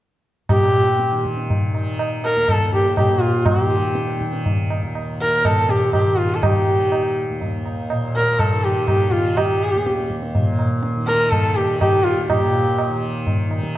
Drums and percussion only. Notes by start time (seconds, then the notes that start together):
0.49 tabla na, tabla ge
0.99 tabla te
1.12 tabla te
1.25 tabla ke
1.38 tabla te
1.50 tabla tin, tabla ge
1.75 tabla na
1.99 tabla na
2.24 tabla na
2.48 tabla na, tabla ge
2.73 tabla ge
2.97 tabla na, tabla ge
3.22 tabla ge
3.46 tabla na, tabla ge
3.95 tabla te
4.08 tabla te
4.21 tabla ke
4.33 tabla te
4.46 tabla tin, tabla ge
4.70 tabla na
4.83 tabla ke
4.95 tabla na
5.45 tabla na, tabla ge
5.69 tabla te
5.93 tabla na, tabla ge
6.19 tabla ge
6.43 tabla na, tabla ge
6.92 tabla na
7.41 tabla tin, tabla ge
7.65 tabla na
7.90 tabla na
8.39 tabla na, tabla ge
8.63 tabla ge
8.88 tabla na, tabla ge
9.12 tabla ge
9.37 tabla na, tabla ge
9.86 tabla te
9.99 tabla te
10.10 tabla ke
10.23 tabla te
10.35 tabla tin, tabla ge
10.59 tabla na
10.83 tabla te
11.08 tabla te
11.32 tabla na, tabla ge
11.56 tabla ge
11.81 tabla na, tabla ge
12.06 tabla ge
12.30 tabla na, tabla ge
12.78 tabla na
13.27 tabla tin, tabla ge
13.51 tabla na
13.63 tabla ke